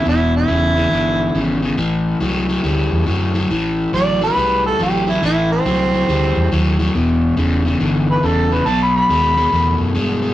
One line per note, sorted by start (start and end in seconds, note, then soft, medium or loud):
0.05 0.41 E1 medium
0.05 0.45 E2 medium
0.05 0.45 B2 loud
0.05 0.34 E4 medium
0.37 1.61 E4 loud
0.48 0.84 E1 medium
0.48 0.74 E2 medium
0.48 0.74 C#3 medium
0.76 0.90 E2 medium
0.76 0.90 C#3 medium
0.91 1.28 G1 medium
0.91 1.31 E2 medium
0.91 1.32 D3 medium
1.34 1.71 G#1 medium
1.34 1.60 E2 medium
1.34 1.60 C#3 loud
1.62 1.76 E2 medium
1.62 1.76 C#3 medium
1.77 2.14 A1 medium
1.77 2.18 A2 medium
1.77 2.18 E3 medium
2.21 2.57 C2 medium
2.21 2.46 A2 medium
2.21 2.46 F#3 medium
2.49 2.62 A2 medium
2.49 2.63 F#3 medium
2.64 2.87 D2 medium
2.64 3.04 A2 medium
2.64 3.04 G3 medium
2.92 3.05 E2 medium
3.06 3.43 F#2 medium
3.06 3.32 A2 medium
3.06 3.32 F#3 medium
3.34 3.48 A2 medium
3.34 3.49 F#3 medium
3.50 3.86 A1 medium
3.50 3.90 A2 medium
3.50 3.90 E3 medium
3.93 4.29 A1 medium
3.93 4.19 A2 medium
3.93 4.19 F#3 medium
3.93 4.22 D5 loud
4.21 4.35 A2 medium
4.21 4.35 F#3 medium
4.21 4.64 B4 loud
4.36 4.72 C2 medium
4.36 4.76 A2 medium
4.36 4.77 G3 medium
4.66 4.80 A4 medium
4.79 5.15 A1 medium
4.79 5.04 A2 medium
4.79 5.05 F#3 medium
4.79 5.12 G4 medium
5.07 5.21 A2 medium
5.07 5.21 F#3 medium
5.07 5.23 E4 medium
5.23 5.59 A1 medium
5.23 5.63 A2 medium
5.23 5.63 E3 medium
5.23 5.51 E4 medium
5.52 6.76 C4 loud
5.65 6.01 C2 medium
5.65 5.91 A2 medium
5.65 5.91 F#3 loud
5.93 6.07 A2 medium
5.93 6.07 F#3 medium
6.09 6.32 D2 medium
6.09 6.49 A2 medium
6.09 6.49 G3 medium
6.36 6.49 E2 medium
6.51 6.87 D#2 medium
6.51 6.77 A2 medium
6.51 6.77 F#3 medium
6.79 6.93 A2 medium
6.79 6.93 F#3 medium
6.94 7.30 E1 medium
6.94 7.34 E2 medium
6.94 7.35 B2 medium
7.37 7.73 E1 medium
7.37 7.62 E2 medium
7.37 7.63 C#3 medium
7.65 7.79 E2 medium
7.65 7.79 C#3 medium
7.80 8.16 G1 medium
7.80 8.20 E2 medium
7.80 8.20 D3 medium
8.11 8.27 B4 medium
8.23 8.59 E1 medium
8.23 8.48 E2 medium
8.23 8.49 C#3 medium
8.23 8.54 A4 medium
8.51 8.65 E2 medium
8.51 8.65 C#3 medium
8.51 8.69 B4 medium
8.66 9.02 B1 medium
8.66 9.06 B2 medium
8.66 9.06 F#3 medium
8.66 8.81 A5 medium
8.82 8.96 B5 medium
8.96 9.79 B5 loud
9.09 9.45 D#2 medium
9.09 9.35 B2 medium
9.09 9.35 G#3 loud
9.37 9.51 B2 medium
9.37 9.51 G#3 medium
9.52 9.76 E2 medium
9.52 9.92 B2 medium
9.52 9.92 A3 medium
9.80 9.93 F#2 medium
9.95 10.31 G2 medium
9.95 10.20 B2 medium
9.95 10.20 G#3 loud
10.22 10.34 B2 medium
10.22 10.34 G#3 medium